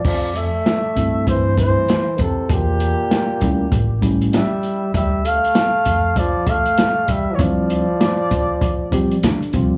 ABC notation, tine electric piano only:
X:1
M:4/4
L:1/8
Q:"Swing 16ths" 1/4=98
K:Dm
V:1 name="Tine electric piano"
z3 [G,A,CE]3 z2 | z3 [G,A,^CE] z [G,A,CE] z2 | z8 | [F,G,CE] z4 [F,G,CG] z [F,G,CF] |]